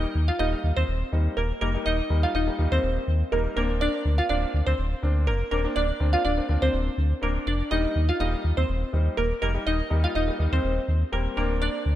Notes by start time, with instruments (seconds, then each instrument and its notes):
Already playing: grand piano G3 A#3 D#4
0.15 sub bass D#2
0.28 synth pluck F4 F5
0.39 sub bass D#1, grand piano G3 A#3 D#4, synth pluck D#4 D#5
0.64 sub bass D#2
0.77 sub bass D#2, synth pluck C4 C5
0.88 sub bass D#1
1.12 sub bass D#2, grand piano G3 A#3 D#4
1.37 sub bass D#1, synth pluck A#3 A#4
1.61 sub bass F1, grand piano G3 A#3 D#4, synth pluck A#3 A#4
1.74 grand piano G3 A#3 D#4
1.86 sub bass D#1, synth pluck D#4 D#5
2.10 sub bass D#2, grand piano G3 A#3 D#4
2.23 synth pluck F4 F5
2.34 sub bass D#1, synth pluck D#4 D#5
2.47 grand piano G3 A#3 D#4
2.59 sub bass D#2, grand piano G3 A#3 D#4
2.72 sub bass D#2, synth pluck C4 C5
2.83 sub bass D#1
3.08 sub bass D#2
3.32 sub bass D#1, grand piano G3 A#3 D#4, synth pluck A#3 A#4
3.56 sub bass D1, grand piano A#3 C4 D4, synth pluck A#3 A#4
3.81 synth pluck D4 D5
4.05 sub bass D2
4.18 synth pluck F4 F5
4.29 sub bass D1, grand piano A#3 C4 D4, synth pluck D4 D5
4.54 sub bass D2
4.67 sub bass D2, synth pluck C4 C5
4.78 sub bass D1
5.02 sub bass D2, grand piano A#3 C4 D4
5.27 sub bass F1, synth pluck A#3 A#4
5.51 sub bass D#1, grand piano A#3 C4 D4, synth pluck A#3 A#4
5.64 grand piano A#3 C4 D4
5.76 sub bass D1, synth pluck D4 D5
6.00 sub bass D2, grand piano A#3 C4 D4
6.13 synth pluck F4 F5
6.25 sub bass D1, synth pluck D4 D5
6.37 grand piano A#3 C4 D4
6.49 sub bass D2, grand piano A#3 C4 D4
6.62 sub bass D2, synth pluck C4 C5
6.73 sub bass D1
6.98 sub bass D2
7.22 sub bass D1, grand piano A#3 C4 D4, synth pluck A#3 A#4
7.47 sub bass F1, synth pluck D4 D5
7.71 sub bass D#1, grand piano G3 A#3 D#4, synth pluck D#4 D#5
7.95 sub bass D#2
8.09 synth pluck F4 F5
8.20 sub bass D#1, grand piano G3 A#3 D#4, synth pluck D#4 D#5
8.44 sub bass D#2
8.57 sub bass D#2, synth pluck C4 C5
8.69 sub bass D#1
8.93 sub bass D#2, grand piano G3 A#3 D#4
9.17 sub bass D#1, synth pluck A#3 A#4
9.42 sub bass F1, grand piano G3 A#3 D#4, synth pluck A#3 A#4
9.54 grand piano G3 A#3 D#4
9.66 sub bass D#1, synth pluck D#4 D#5
9.90 sub bass D#2, grand piano G3 A#3 D#4
10.04 synth pluck F4 F5
10.15 sub bass D#1, synth pluck D#4 D#5
10.28 grand piano G3 A#3 D#4
10.39 sub bass D#2, grand piano G3 A#3 D#4
10.52 sub bass D#2, synth pluck C4 C5
10.64 sub bass D#1
10.88 sub bass D#2
11.12 sub bass D#1, grand piano G3 A#3 C4, synth pluck A#3 A#4
11.37 sub bass D1, grand piano A#3 C4 D4, synth pluck A#3 A#4
11.62 synth pluck D4 D5
11.86 sub bass D2